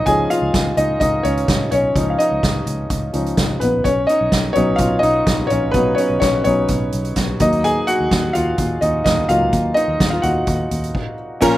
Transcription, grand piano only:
0.00 0.07 F3 medium
0.00 3.63 B3 medium
0.00 0.07 C#4 medium
0.00 0.08 D#4 medium
0.00 3.60 B4 medium
0.00 1.23 C#5 medium
0.00 0.77 D#5 medium
0.06 0.74 F3 soft
0.06 0.74 C#4 soft
0.06 0.74 D#4 medium
0.06 0.13 G#4 medium
0.06 0.11 G#5 medium
0.30 0.75 F4 medium
0.30 0.79 F5 medium
0.77 1.00 D#4 medium
0.77 0.98 D#5 medium
1.00 1.23 D#4 medium
1.00 1.25 D#5 medium
1.23 1.69 C#4 medium
1.23 1.70 C#5 medium
1.71 1.95 C#4 medium
1.71 2.13 C#5 medium
1.96 2.63 F3 medium
1.96 2.63 C#4 soft
1.96 2.19 D#4 medium
2.10 2.18 F5 medium
2.19 2.87 D#4 medium
2.19 2.86 D#5 medium
3.13 3.35 F3 soft
3.13 3.36 C#4 soft
3.13 3.35 D#4 soft
3.60 3.68 B3 medium
3.60 3.65 B4 medium
3.84 4.08 C#4 medium
3.84 4.09 C#5 medium
4.07 4.53 D#4 medium
4.07 4.57 D#5 medium
4.53 5.23 F#3 medium
4.53 5.24 B3 soft
4.53 4.78 C#4 medium
4.53 5.01 D#4 medium
4.53 4.79 C#5 medium
4.76 5.02 F5 medium
4.80 5.02 F4 medium
4.99 5.47 D#4 medium
4.99 5.50 D#5 medium
5.47 5.53 C#5 medium
5.51 5.56 C#4 medium
5.71 6.06 F#3 medium
5.71 5.97 B3 medium
5.71 6.06 D#4 medium
5.71 5.97 B4 medium
5.95 6.20 C#4 medium
5.95 6.18 C#5 medium
6.20 6.44 C#4 medium
6.20 6.43 C#5 medium
6.44 6.67 F#3 soft
6.44 6.67 B3 soft
6.44 6.90 C#4 medium
6.44 6.67 D#4 medium
6.44 6.89 C#5 medium
7.40 8.07 F#3 medium
7.40 8.08 A#3 soft
7.40 7.63 D#4 medium
7.40 7.65 D#5 medium
7.64 7.86 G#4 medium
7.64 7.88 G#5 loud
7.87 8.31 F#4 medium
7.87 8.36 F#5 medium
8.33 8.79 F4 medium
8.33 8.83 F5 medium
8.81 8.88 D#4 medium
8.81 8.86 D#5 medium
9.04 9.28 D#4 medium
9.04 9.29 D#5 medium
9.29 9.96 F#3 medium
9.29 9.97 A#3 soft
9.29 9.75 D#4 medium
9.29 9.74 F4 medium
9.29 9.78 F5 medium
9.74 10.10 D#4 medium
9.74 10.12 D#5 medium
10.10 10.23 F4 medium
10.10 10.23 F5 medium
10.22 11.14 F#4 medium
10.22 11.13 F#5 medium
11.41 11.58 A#2 medium
11.41 11.58 C#4 medium
11.41 11.58 F4 medium
11.41 11.58 A#4 medium

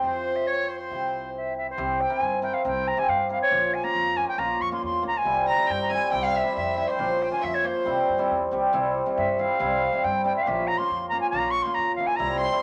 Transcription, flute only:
0.03 0.37 C5 medium
0.36 0.48 E5 medium
0.47 0.70 C#5 medium
0.68 0.78 C5 medium
0.79 1.30 C5 medium
1.37 1.56 E5 medium
1.58 1.67 E5 medium
1.70 2.02 C5 medium
2.01 2.14 G5 medium
2.13 2.42 G#5 medium
2.43 2.55 G5 medium
2.54 2.65 F5 medium
2.66 2.89 G5 medium
2.88 3.00 A#5 medium
2.99 3.10 G#5 medium
3.09 3.30 F5 medium
3.31 3.41 F5 medium
3.42 3.76 C#5 loud
3.74 3.85 G#5 medium
3.84 4.18 A#5 loud
4.17 4.28 G#5 medium
4.28 4.40 G5 loud
4.38 4.63 A#5 medium
4.61 4.72 C#6 medium
4.73 4.82 C6 medium
4.85 5.04 C6 medium
5.07 5.19 A#5 medium
5.17 5.48 G#5 medium
5.49 5.73 A#5 loud
5.71 5.81 G5 medium
5.82 5.91 A#5 medium
5.94 6.16 G#5 medium
6.15 6.24 G5 medium
6.26 6.38 F5 medium
6.36 6.56 E5 medium
6.56 6.76 E5 medium
6.80 6.89 E5 medium
6.89 7.24 C5 medium
7.22 7.31 G5 medium
7.32 7.45 G#5 medium
7.44 7.56 E5 medium
7.54 7.68 C#5 medium
7.66 8.31 C5 medium
9.17 9.41 E5 medium
9.40 10.06 F5 medium
10.04 10.25 G5 medium
10.25 10.35 G5 medium
10.36 10.43 E5 medium
10.42 10.49 F5 medium
10.47 10.69 E5 medium
10.67 10.79 A#5 loud
10.78 11.09 C6 loud
11.09 11.20 A#5 medium
11.21 11.29 G#5 medium
11.30 11.52 A#5 medium
11.51 11.64 C#6 loud
11.62 11.76 C6 loud
11.74 11.95 A#5 loud
11.96 12.08 F5 medium
12.07 12.18 G#5 loud
12.16 12.40 A#5 medium
12.38 12.62 C6 loud

